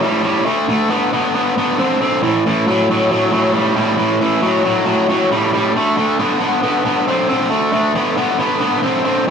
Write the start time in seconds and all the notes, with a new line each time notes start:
0.02 A2 G3
0.24 A2 G3
0.46 D3 A3
0.69 D3 A3
0.89 D3 B3
1.13 D3 B3
1.34 D3 B3
1.58 D3 B3
1.79 D3 C4
2.01 D3 C4
2.23 A2 E3
2.46 A2 E3
2.67 A2 F#3
2.90 A2 F#3
3.11 A2 F#3
3.32 A2 F#3
3.54 A2 G3
3.76 A2 G3
3.98 A2 E3
4.21 A2 E3
4.42 A2 F#3
4.64 A2 F#3
4.85 A2 F#3
5.09 A2 F#3
5.32 A2 G3
5.54 A2 G3
5.76 D3 A3
5.97 D3 A3
6.19 D3 B3
6.40 D3 B3
6.63 D3 B3
6.85 D3 B3
7.07 D3 C4
7.29 D3 C4
7.50 D3 A3
7.72 D3 A3
7.95 D3 B3
8.17 D3 B3
8.38 D3 B3
8.60 D3 B3
8.82 D3 C4
9.05 D3 C4